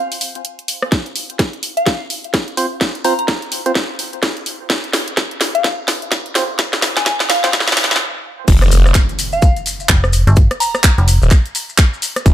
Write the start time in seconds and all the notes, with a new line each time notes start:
0.12 open hi-hat
0.21 open hi-hat
0.35 closed hi-hat
0.45 closed hi-hat
0.59 closed hi-hat
0.68 open hi-hat
0.82 cross-stick
0.92 kick, snare, closed hi-hat
1.06 closed hi-hat
1.16 open hi-hat
1.30 closed hi-hat
1.39 kick, snare, closed hi-hat
1.53 closed hi-hat
1.63 open hi-hat
1.77 F5, closed hi-hat
1.86 kick, snare, closed hi-hat
2.10 open hi-hat
2.24 closed hi-hat
2.34 kick, snare, closed hi-hat
2.48 closed hi-hat
2.57 C4 F4 C5, open hi-hat
2.81 kick, snare, closed hi-hat
2.95 closed hi-hat
3.04 C4 F4 C5 A#5, open hi-hat
3.19 A#5, closed hi-hat
3.28 kick, snare, closed hi-hat
3.42 closed hi-hat
3.52 open hi-hat
3.66 C4 F4 C5, closed hi-hat
3.75 kick, snare, closed hi-hat
3.99 open hi-hat
4.13 closed hi-hat
4.23 kick, snare, closed hi-hat
4.37 closed hi-hat
4.46 open hi-hat
4.70 kick, snare, closed hi-hat
4.84 closed hi-hat
4.93 snare, open hi-hat
5.08 closed hi-hat
5.17 kick, snare, closed hi-hat
5.31 closed hi-hat
5.41 snare, open hi-hat
5.55 F5, closed hi-hat
5.64 kick, snare, closed hi-hat
5.88 snare, open hi-hat
6.02 closed hi-hat
6.12 kick, snare, closed hi-hat
6.26 closed hi-hat
6.35 C4 F4 C5, snare, open hi-hat
6.59 kick, snare, closed hi-hat
6.73 snare, closed hi-hat
6.82 snare, open hi-hat
6.97 G#5, snare, closed hi-hat
7.06 G#5, kick, snare, closed hi-hat
7.20 snare, closed hi-hat
7.30 F5, snare, open hi-hat
7.44 C4 F4 C5 F5, snare, closed hi-hat
7.53 kick, snare, closed hi-hat
7.60 snare
7.68 snare, open hi-hat
7.72 snare
7.77 snare, open hi-hat
7.84 snare
7.91 snare, closed hi-hat
7.96 snare
8.48 F1, kick, closed hi-hat, crash, impact, maracas
8.62 cross-stick, closed hi-hat, maracas
8.71 open hi-hat, maracas
8.86 cross-stick, maracas
8.94 kick, clap, closed hi-hat, maracas
9.09 closed hi-hat, maracas
9.19 open hi-hat, maracas
9.32 F5, maracas
9.42 kick, closed hi-hat, maracas
9.56 closed hi-hat, maracas
9.66 open hi-hat, maracas
9.80 maracas
9.89 F1, kick, clap, closed hi-hat, maracas
10.04 cross-stick, maracas
10.13 open hi-hat, maracas
10.27 G1, closed hi-hat, maracas
10.36 kick, closed hi-hat, maracas
10.51 cross-stick, closed hi-hat, maracas
10.60 A#5, open hi-hat, maracas
10.74 A#5, cross-stick, maracas
10.83 kick, clap, closed hi-hat, maracas
10.98 F1, closed hi-hat, maracas
11.08 open hi-hat, maracas
11.22 D#1, maracas
11.31 kick, clap, closed hi-hat, maracas
11.46 closed hi-hat, maracas
11.55 open hi-hat, maracas
11.69 maracas
11.78 kick, clap, closed hi-hat, maracas
11.94 maracas
12.02 open hi-hat, maracas
12.16 cross-stick, closed hi-hat, maracas
12.26 F1, kick, closed hi-hat, maracas